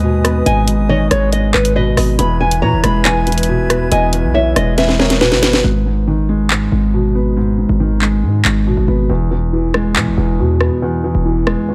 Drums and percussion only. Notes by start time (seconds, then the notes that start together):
0.25 cross-stick, closed hi-hat
0.46 closed hi-hat
0.68 closed hi-hat
1.11 cross-stick, closed hi-hat
1.33 closed hi-hat
1.54 clap
1.65 closed hi-hat
1.97 cross-stick, open hi-hat
2.19 closed hi-hat
2.51 closed hi-hat
2.84 cross-stick, closed hi-hat
3.05 clap, closed hi-hat
3.27 closed hi-hat
3.32 closed hi-hat
3.38 closed hi-hat
3.43 closed hi-hat
3.70 cross-stick, closed hi-hat
3.92 closed hi-hat
4.13 closed hi-hat
4.56 cross-stick, closed hi-hat
4.78 snare, closed hi-hat
4.89 snare
4.99 snare
5.10 snare, closed hi-hat
5.21 snare
5.32 snare
5.43 snare, closed hi-hat
5.53 snare
6.50 clap
8.02 clap
8.45 clap
9.74 cross-stick
9.96 clap
10.61 cross-stick
11.47 cross-stick